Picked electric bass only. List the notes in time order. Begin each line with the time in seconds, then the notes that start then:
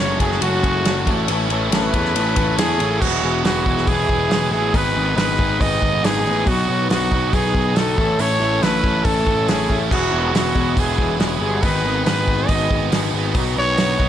Already playing: F#1
0.20 F#1
0.42 F#1
0.85 F#1
1.07 A1
1.29 A1
1.49 A1
1.71 A1
1.93 E2
2.15 A1
2.36 A1
2.59 E2
2.80 A1
3.01 E1
3.23 E1
3.45 E1
3.66 E1
3.87 E1
4.09 E1
4.30 E1
4.52 A1
4.74 G#1
4.95 G#1
5.16 G#1
5.60 G#1
5.82 G#1
6.04 G#1
6.26 A1
6.46 B1
6.69 B1
6.90 B1
7.12 B1
7.33 B1
7.54 B1
7.76 B1
7.98 A1
8.19 A1
8.40 A1
8.62 A1
9.05 A1
9.26 A1
9.48 A1
9.70 A1
9.91 E1
10.12 E1
10.33 E1
10.55 E1
10.77 E1
10.98 E1
11.20 E1
11.41 G1
11.63 G#1
11.84 G#1
12.06 G#1
12.49 G#1
12.70 G#1
12.92 G#1
13.14 G#1
13.35 B1
13.57 B1
13.78 B1
13.99 B1